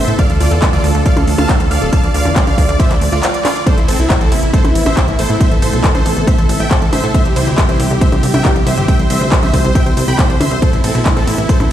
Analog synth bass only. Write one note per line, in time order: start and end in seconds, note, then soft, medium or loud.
0.08 0.16 A2 medium
0.30 0.38 D2 medium
0.40 0.48 D2 loud
0.51 0.59 E2 medium
0.73 0.81 D2 medium
0.84 0.92 D2 loud
0.95 1.03 D2 medium
1.17 1.25 D2 medium
1.27 1.35 D2 loud
1.38 1.46 D2 medium
1.60 1.68 D2 medium
1.71 1.79 D2 loud
1.82 1.90 D1 medium
2.04 2.11 D2 medium
2.14 2.22 D2 loud
2.25 2.33 E2 medium
2.47 2.55 D2 medium
2.58 2.66 D2 loud
2.69 2.77 D2 medium
2.90 2.98 D2 medium
3.01 3.09 D2 loud
3.12 3.20 D2 loud
3.77 3.85 A1 medium
3.88 3.96 A1 loud
3.99 4.07 B1 loud
4.21 4.29 A1 medium
4.32 4.40 A1 loud
4.43 4.51 A1 medium
4.64 4.72 A1 medium
4.75 4.83 A1 loud
4.86 4.94 A1 medium
5.08 5.16 A1 medium
5.19 5.27 A1 loud
5.30 5.38 A2 medium
5.51 5.59 A1 medium
5.62 5.70 A1 loud
5.73 5.81 B1 medium
5.95 6.03 A1 medium
6.06 6.14 A1 loud
6.17 6.25 A1 loud
6.38 6.46 A1 medium
6.49 6.57 A1 loud
6.60 6.68 A1 medium
6.82 6.90 A1 medium
6.93 7.01 A1 loud
7.04 7.11 A2 medium
7.25 7.33 C2 medium
7.36 7.44 C2 loud
7.47 7.55 D2 loud
7.69 7.77 C2 medium
7.80 7.88 C2 loud
7.91 7.98 C2 medium
8.12 8.20 C2 medium
8.23 8.31 C2 loud
8.34 8.42 C2 medium
8.56 8.64 C2 medium
8.66 8.74 C2 loud
8.77 8.85 G1 medium
8.99 9.07 C2 medium
9.10 9.18 C2 loud
9.21 9.29 D2 loud
9.43 9.51 C2 medium
9.54 9.61 C2 loud
9.64 9.72 C2 medium
9.86 9.94 C2 medium
9.97 10.05 C2 loud
10.08 10.16 C2 medium
10.30 10.38 C2 medium
10.40 10.48 D2 medium
10.51 10.59 C2 medium
10.73 10.81 A1 medium
10.84 10.92 A1 loud
10.95 11.03 B1 medium
11.17 11.25 A1 medium
11.27 11.35 A1 loud
11.38 11.46 A1 medium
11.60 11.68 A1 medium